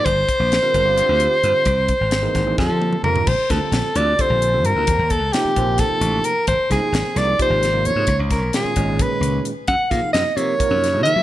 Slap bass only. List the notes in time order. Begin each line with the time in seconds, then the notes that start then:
0.06 G1
0.40 A#1
0.74 G1
1.09 D2
1.43 G2
1.66 C2
2.01 G#1
2.35 G#1
2.59 F2
2.69 F3
3.03 F2
3.27 A#1
3.50 D2
3.61 muted slap bass stroke
3.72 A#1
3.95 D2
4.30 A#1
4.64 G2
4.75 D2
4.88 D#2
4.99 D#2
5.21 C#2
5.45 muted slap bass stroke
5.56 A#1
5.91 muted slap bass stroke
6.01 A1
6.48 G#1
6.59 muted slap bass stroke
6.71 C2
6.92 G#1
7.16 C2
7.50 G#1
7.84 F2
7.96 G#2
8.08 C#2
8.19 C#2
8.41 B1
8.65 muted slap bass stroke
8.76 G#1
9.10 muted slap bass stroke
9.21 C#2
9.68 F#2
9.79 muted slap bass stroke
9.91 A#2
10.03 muted slap bass stroke
10.14 F#2
10.37 C3
10.71 F#2
11.05 D#3
11.16 F#3